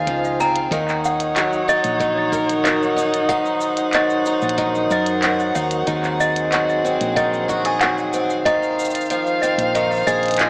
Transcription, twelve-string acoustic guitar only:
0.00 0.71 D#3 medium
0.00 0.39 C4 medium
0.00 0.78 G#4 medium
0.07 0.78 F3 medium
0.40 0.78 C4 medium
0.72 2.00 D#3 medium
1.36 2.64 F#3 medium
1.68 2.96 D#4 medium
2.00 3.29 D#3 medium
2.33 4.90 A#4 medium
2.65 3.94 F#3 medium
2.97 4.26 D#4 medium
3.29 4.58 D#3 medium
3.94 5.23 F#3 medium
4.27 5.55 D#4 medium
4.58 5.86 D#3 medium
4.91 5.94 A#4 medium
5.23 6.52 F#3 medium
5.55 6.84 D#4 medium
5.87 7.15 D#3 medium
6.53 7.80 F#3 medium
6.85 8.13 C4 medium
7.16 8.45 D#3 medium
7.49 7.65 F#4 medium
7.65 8.52 G#4 medium
7.81 8.52 F#3 medium
8.14 9.42 C4 medium
8.46 9.74 D#3 medium
9.10 10.39 F3 medium
9.43 10.50 C4 medium
9.75 10.50 D#3 medium
10.07 10.50 G#4 medium
10.40 10.50 F3 medium

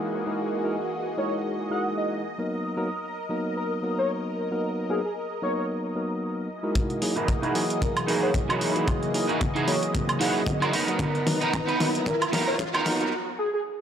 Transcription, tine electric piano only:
0.00 0.22 G#3 medium
0.00 0.22 D#4 medium
0.00 0.23 E4 medium
0.00 0.23 F#4 medium
0.00 0.23 A#4 medium
0.26 0.62 G#3 medium
0.26 0.62 D#4 medium
0.26 0.62 E4 medium
0.26 0.62 F#4 medium
0.26 0.62 A#4 medium
0.64 0.75 G#3 medium
0.64 0.75 D#4 medium
0.64 0.75 E4 medium
0.64 0.75 F#4 medium
0.64 0.75 A#4 medium
1.17 1.68 G#3 medium
1.17 1.68 D#4 medium
1.17 1.68 E4 medium
1.17 1.68 F#4 medium
1.17 1.68 A#4 medium
1.70 2.22 G#3 medium
1.70 2.23 D#4 medium
1.70 2.23 E4 medium
1.70 2.23 F#4 medium
1.70 2.23 A#4 medium
2.38 2.74 F#3 medium
2.38 2.74 A#3 medium
2.38 2.74 B3 medium
2.38 2.75 D#4 medium
2.38 2.75 A#4 medium
2.77 2.88 F#3 medium
2.77 2.88 A#3 medium
2.77 2.88 B3 medium
2.77 2.88 D#4 medium
2.77 2.88 A#4 medium
3.29 3.80 F#3 medium
3.29 3.80 A#3 medium
3.29 3.81 B3 medium
3.29 3.81 D#4 medium
3.29 3.81 A#4 medium
3.82 4.47 F#3 medium
3.82 4.47 A#3 medium
3.82 4.48 B3 medium
3.82 4.48 D#4 medium
3.82 4.48 A#4 medium
4.51 4.87 F#3 medium
4.51 4.87 A#3 medium
4.51 4.87 B3 medium
4.51 4.87 D#4 medium
4.51 4.87 A#4 medium
4.89 5.00 F#3 medium
4.89 5.00 A#3 medium
4.89 5.00 B3 medium
4.89 5.00 D#4 medium
4.89 5.00 A#4 medium
5.42 5.93 F#3 medium
5.42 5.93 A#3 medium
5.42 5.93 B3 medium
5.42 5.93 D#4 medium
5.42 5.93 A#4 medium
5.95 6.47 F#3 medium
5.95 6.47 A#3 medium
5.95 6.48 B3 medium
5.95 6.48 D#4 medium
5.95 6.48 A#4 medium
6.63 6.99 G#3 medium
6.63 6.99 D#4 medium
6.63 6.99 E4 medium
6.63 6.99 F#4 medium
6.63 6.99 A#4 medium
7.02 7.12 F#3 medium
7.02 7.12 A#3 medium
7.02 7.13 D#4 medium
7.02 7.13 E4 medium
7.02 7.13 G#4 medium
7.54 8.06 E3 medium
7.54 8.05 F#3 medium
7.54 8.05 A#3 medium
7.54 8.06 G#4 medium
7.54 8.05 D#5 medium
8.08 8.73 E3 medium
8.08 8.72 F#3 medium
8.08 8.72 A#3 medium
8.08 8.73 G#4 medium
8.08 8.73 D#5 medium
8.76 9.12 E3 medium
8.76 9.11 F#3 medium
8.76 9.11 A#3 medium
8.76 9.12 G#4 medium
8.76 9.12 D#5 medium
9.14 9.25 F#3 medium
9.14 9.25 A#3 medium
9.14 9.25 D#4 medium
9.14 9.25 E4 medium
9.14 9.25 G#4 medium
9.67 10.18 E3 medium
9.67 10.18 F#3 medium
9.67 10.18 A#3 medium
9.67 10.18 G#4 medium
9.67 10.18 D#5 medium
10.20 10.72 E3 medium
10.20 10.72 F#3 medium
10.20 10.72 A#3 medium
10.20 10.73 G#4 medium
10.20 10.72 D#5 medium
10.88 11.00 F#3 medium
10.88 11.00 A#3 medium
10.88 11.00 B3 medium
10.88 11.01 D#4 medium
10.88 11.01 A#4 medium
11.26 11.37 F#3 medium
11.26 11.37 A#3 medium
11.26 11.37 B3 medium
11.26 11.37 D#4 medium
11.26 11.37 A#4 medium
11.79 12.04 F#3 medium
11.79 12.04 A#3 medium
11.79 12.04 B3 medium
11.79 12.05 D#4 medium
11.79 12.05 A#4 medium
12.32 12.43 F#3 medium
12.32 12.43 A#3 medium
12.32 12.43 B3 medium
12.32 12.44 D#4 medium
12.32 12.44 A#4 loud
12.85 13.10 F#3 medium
12.85 13.11 A#3 medium
12.85 13.11 B3 medium
12.85 13.11 D#4 medium
12.85 13.11 A#4 medium

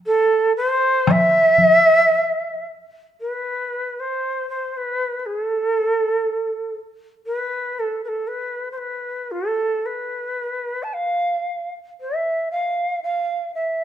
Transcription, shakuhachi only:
0.06 0.53 A4 medium
0.57 1.13 C5 medium
1.11 2.67 E5 loud
3.21 4.02 B4 medium
4.00 4.49 C5 medium
4.50 4.78 C5 medium
4.77 5.19 B4 medium
5.19 5.27 B4 soft
5.26 5.42 G#4 medium
5.42 6.76 A4 medium
7.26 7.81 B4 medium
7.79 8.04 A4 medium
8.04 8.29 A4 medium
8.04 8.09 B4 medium
8.28 8.71 B4 medium
8.72 8.79 C5 soft
8.78 9.33 B4 medium
9.31 9.87 A4 medium
9.86 10.85 B4 medium
10.83 10.95 A5 soft
10.94 11.72 F5 medium
12.01 12.49 E5 medium
12.51 13.00 F5 medium
13.03 13.52 F5 medium
13.55 13.84 E5 medium

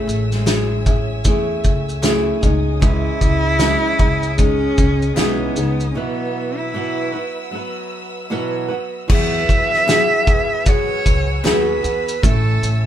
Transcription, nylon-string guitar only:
0.00 0.46 A3 medium
0.00 0.45 C#4 medium
0.00 0.46 E4 medium
0.00 0.47 G#4 medium
0.45 0.86 C#4 medium
0.45 0.86 E4 medium
0.45 0.84 G#4 medium
0.85 1.24 C#4 soft
0.85 1.24 E4 soft
0.85 1.25 G#4 medium
1.24 2.01 A3 medium
1.24 2.03 C#4 medium
1.24 2.03 E4 medium
1.24 2.04 G#4 medium
2.02 2.42 A3 medium
2.02 2.42 C#4 loud
2.02 2.42 E4 loud
2.02 2.40 G#4 loud
2.41 2.80 G#3 medium
2.41 2.81 C#4 medium
2.41 2.82 D#4 medium
2.41 2.80 G#4 medium
2.80 3.58 C#3 medium
2.80 3.60 E3 medium
2.80 3.59 G#3 medium
2.80 3.60 C#4 medium
2.80 3.61 G#4 medium
3.59 3.99 C#3 medium
3.59 4.00 E3 medium
3.59 4.00 G#3 medium
3.59 4.00 C#4 medium
3.59 3.97 G#4 medium
3.98 4.36 G#3 medium
3.98 4.37 C#4 medium
3.98 4.39 G#4 medium
4.37 5.16 G#3 medium
4.37 5.17 C#4 medium
4.37 5.17 D#4 medium
4.37 5.18 G#4 medium
5.16 5.56 C#3 medium
5.16 5.57 E3 medium
5.16 5.57 G#3 medium
5.16 5.57 C#4 medium
5.16 5.56 D#4 medium
5.16 5.55 G#4 medium
5.57 5.95 G#3 soft
5.57 5.95 C#4 medium
5.57 5.96 D#4 medium
5.57 5.96 G#4 medium
5.95 6.73 B2 medium
5.95 6.74 E3 medium
5.95 6.74 F#3 medium
5.95 6.75 B3 medium
5.95 6.76 F#4 medium
5.95 6.75 B4 medium
6.74 7.14 B2 medium
6.74 7.14 E3 medium
6.74 7.14 F#3 medium
6.74 7.14 B3 medium
6.74 7.12 F#4 medium
6.74 7.11 B4 medium
7.12 7.50 F#3 soft
7.12 7.51 B3 medium
7.12 7.52 F#4 medium
7.12 7.52 B4 medium
7.51 8.30 F#3 medium
7.51 8.31 B3 medium
7.51 8.31 F#4 medium
7.55 8.32 B4 medium
8.30 8.70 B2 loud
8.30 8.70 E3 medium
8.30 8.70 F#3 loud
8.30 8.70 B3 medium
8.30 8.68 F#4 loud
8.30 8.67 B4 loud
8.68 9.07 F#3 soft
8.68 9.08 B3 medium
8.68 9.08 F#4 medium
8.68 9.09 B4 medium
9.08 9.86 E3 medium
9.08 9.86 F#3 medium
9.08 9.86 B3 medium
9.08 9.87 F#4 medium
9.08 9.88 G#4 medium
9.87 10.27 E3 medium
9.87 10.27 F#3 medium
9.87 10.27 B3 medium
9.87 10.27 F#4 medium
9.87 10.25 G#4 medium
10.26 10.65 B3 medium
10.26 10.66 F#4 medium
10.26 10.66 G#4 medium
10.64 11.43 F#3 medium
10.64 11.43 B3 medium
10.64 11.43 F#4 medium
10.64 11.45 G#4 medium
11.44 11.84 F#3 medium
11.44 11.84 B3 medium
11.44 11.84 F#4 loud
11.44 11.81 G#4 loud
11.82 12.23 B3 soft
11.82 12.23 F#4 soft
11.82 12.23 G#4 medium
12.22 12.86 A3 medium
12.22 12.86 C#4 medium
12.22 12.86 E4 medium

